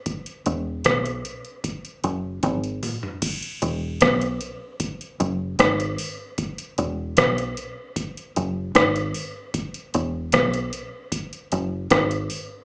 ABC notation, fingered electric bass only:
X:1
M:4/4
L:1/8
Q:1/4=76
K:E
V:1 name="Fingered electric bass" clef=bass
z E,,, B,,, z2 F,,, G,,, z | z E,,, B,,, z2 F,,, G,,, z | z E,,, B,,, z2 F,,, G,,, z | z E,,, B,,, z2 F,,, G,,, z |]